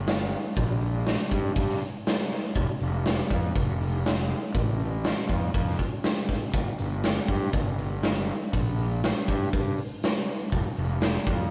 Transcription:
Already playing: G1
0.07 snare, open hi-hat
0.31 open hi-hat
0.56 A#1, kick, open hi-hat
0.81 open hi-hat
1.06 snare, open hi-hat
1.31 G2, kick, open hi-hat
1.55 G2, kick, open hi-hat
1.69 snare
1.81 open hi-hat
2.06 snare, open hi-hat
2.31 snare, open hi-hat
2.55 F1, kick, open hi-hat
2.80 F1, open hi-hat
3.05 snare, open hi-hat
3.30 F2, kick, open hi-hat
3.56 F1, kick, open hi-hat
3.81 open hi-hat
4.06 snare, open hi-hat
4.30 open hi-hat
4.54 A1, kick, open hi-hat
4.79 open hi-hat
5.04 snare, open hi-hat
5.29 F2, kick, open hi-hat
5.54 F2, kick, open hi-hat
5.68 snare
5.79 kick, open hi-hat
6.03 snare, open hi-hat
6.28 kick, snare, open hi-hat
6.53 G1, kick, open hi-hat
6.79 G1, open hi-hat
7.03 snare, open hi-hat
7.28 G2, kick, open hi-hat
7.52 G1, kick, open hi-hat
7.79 open hi-hat
8.03 snare, open hi-hat
8.28 open hi-hat
8.53 A#1, kick, open hi-hat
8.78 open hi-hat
9.03 snare, open hi-hat
9.28 G2, kick, open hi-hat
9.53 G2, kick, open hi-hat
9.78 open hi-hat
10.03 snare, open hi-hat
10.28 open hi-hat
10.52 F1, kick, open hi-hat
10.77 F1, open hi-hat
11.01 snare, open hi-hat
11.26 F2, kick, open hi-hat

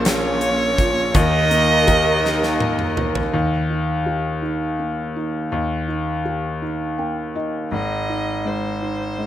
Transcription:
Already playing: A#1 A#3 C#4 F4 A#4
0.05 C#5, snare, closed hi-hat
0.41 closed hi-hat
0.78 F4, kick, closed hi-hat
1.15 D#2 D#3 D#4 G4 A#4 D#5, kick, closed hi-hat
1.51 A#3, closed hi-hat
1.87 G4, kick, closed hi-hat
2.25 snare
2.43 snare
2.60 high tom
2.79 mid tom
2.97 A#4, mid tom
3.15 floor tom
3.33 D#2 D#3
3.70 D#4
4.06 G4
4.42 D#4
4.79 A#3
5.16 D#4
5.52 D#2 D#3
5.88 D#4
6.25 G4
6.62 D#4
6.98 A#3 G5
7.35 D#4 D#5
7.71 G#1 G#3 D#5
8.09 D#4
8.45 G#3 C5
8.82 D#4
9.18 G#3

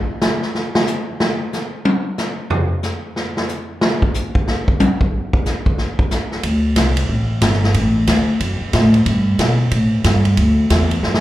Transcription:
0.21 snare, hi-hat pedal
0.42 snare
0.55 snare
0.75 snare
0.87 hi-hat pedal
1.20 snare
1.53 snare, hi-hat pedal
1.85 high tom
2.18 snare, hi-hat pedal
2.50 floor tom
2.83 snare, hi-hat pedal
3.16 snare
3.37 snare
3.49 hi-hat pedal
3.81 snare
4.02 kick
4.14 hi-hat pedal
4.35 kick
4.48 snare
4.68 kick
4.80 hi-hat pedal, high tom
5.01 kick
5.33 kick
5.46 snare, hi-hat pedal
5.66 kick
5.78 snare
5.99 kick
6.11 snare, hi-hat pedal
6.32 snare
6.43 D2, kick, ride
6.76 C2, kick, snare, hi-hat pedal, ride
6.97 ride
7.09 A1, kick
7.42 G1, kick, snare, hi-hat pedal, ride
7.53 snare
7.64 snare
7.74 A1, kick, ride
8.07 D2, kick, snare, hi-hat pedal, ride
8.40 F#2, kick, ride
8.61 muted upright bass stroke
8.73 A2, kick, snare, hi-hat pedal, ride
8.94 ride
9.06 G2, kick, ride
9.38 B2, kick, snare, hi-hat pedal, ride
9.71 A2, kick, ride
10.04 G2, kick, snare, hi-hat pedal, ride
10.25 ride
10.37 D2, kick, ride
10.70 E2, kick, snare, hi-hat pedal, ride
10.91 ride
11.03 F#2, snare
11.14 snare

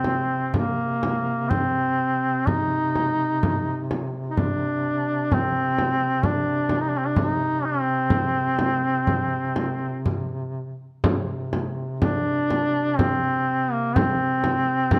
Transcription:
Already playing: C3 C4
0.04 frame drum
0.48 A#3 C4
0.54 frame drum
1.03 frame drum
1.49 C4, frame drum
2.47 D#4, frame drum
2.96 frame drum
3.43 frame drum
3.91 frame drum
4.30 D#4
4.37 D4, frame drum
5.32 C4, frame drum
5.79 frame drum
6.23 D4, frame drum
6.69 frame drum
6.81 D#4
6.89 D4
6.98 C4
7.06 D4
7.16 D#4, frame drum
7.65 C4
8.10 frame drum
8.59 frame drum
9.07 frame drum
9.56 frame drum
10.06 frame drum
11.04 C3, frame drum
11.53 frame drum
12.00 D4, frame drum
12.51 frame drum
12.98 C4, frame drum
13.71 A#3
13.95 C4, frame drum
14.44 frame drum
14.91 frame drum

